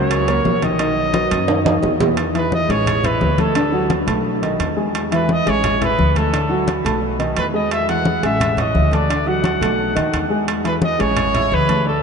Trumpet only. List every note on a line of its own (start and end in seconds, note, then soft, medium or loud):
0.00 0.60 C#5 medium
0.65 1.80 D#5 loud
2.38 2.53 B4 medium
2.55 2.73 D#5 loud
2.71 3.07 C#5 loud
3.06 3.42 B4 medium
3.41 3.92 A4 medium
5.15 5.34 B4 loud
5.32 5.51 D#5 loud
5.50 5.83 C#5 loud
5.84 6.19 B4 loud
6.17 6.68 A4 medium
7.38 7.46 B4 medium
7.55 7.71 D#5 medium
7.73 7.88 E5 loud
7.89 8.21 F#5 loud
8.25 8.62 E5 loud
8.60 8.96 D#5 medium
8.94 9.29 D5 medium
9.28 10.31 F#5 medium
10.67 10.75 B4 medium
10.84 11.02 D#5 loud
11.01 11.56 C#5 loud
11.54 11.87 B4 loud
11.88 12.03 A4 medium